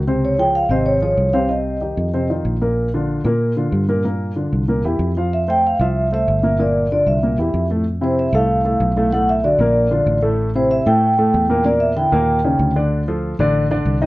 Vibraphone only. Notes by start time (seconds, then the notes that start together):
0.25 C#5
0.40 G5
0.55 F5
0.71 D#5
0.86 C#5
1.03 C#5
1.33 F5
1.49 D#5
5.33 E5
5.50 G5
5.67 F5
5.81 E5
6.14 E5
6.60 D5
6.92 D5
7.07 E5
8.04 C5
8.19 E5
8.35 F5
9.12 F#5
9.29 E5
9.44 D5
10.56 C5
10.71 E5
10.87 G5
11.65 D5
11.80 E5
11.97 G5